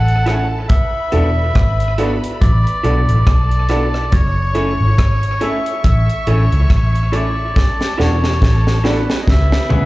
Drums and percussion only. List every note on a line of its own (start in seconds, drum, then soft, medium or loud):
0.08 closed hi-hat soft
0.26 cross-stick medium
0.26 closed hi-hat medium
0.69 kick loud
0.69 closed hi-hat medium
1.12 closed hi-hat medium
1.55 kick loud
1.55 cross-stick loud
1.55 closed hi-hat medium
1.80 closed hi-hat medium
1.98 closed hi-hat medium
2.24 closed hi-hat medium
2.42 kick loud
2.42 closed hi-hat loud
2.67 closed hi-hat medium
2.84 closed hi-hat medium
3.09 closed hi-hat medium
3.27 kick loud
3.27 cross-stick loud
3.27 closed hi-hat medium
3.51 closed hi-hat medium
3.69 cross-stick medium
3.69 closed hi-hat medium
3.94 cross-stick medium
4.12 kick loud
4.12 closed hi-hat medium
4.55 closed hi-hat medium
4.98 kick loud
4.98 cross-stick loud
4.98 closed hi-hat medium
5.23 closed hi-hat medium
5.41 closed hi-hat medium
5.66 closed hi-hat medium
5.84 kick loud
5.84 closed hi-hat loud
6.10 closed hi-hat medium
6.27 closed hi-hat medium
6.52 closed hi-hat medium
6.70 kick loud
6.70 cross-stick medium
6.70 closed hi-hat medium
6.95 closed hi-hat soft
7.13 closed hi-hat medium
7.56 kick loud
7.56 snare medium
7.81 snare medium
8.00 snare medium
8.24 snare medium
8.42 kick loud
8.42 snare medium
8.67 snare medium
8.85 snare medium
9.10 snare medium
9.28 kick loud
9.28 snare medium
9.52 snare medium
9.70 mid tom medium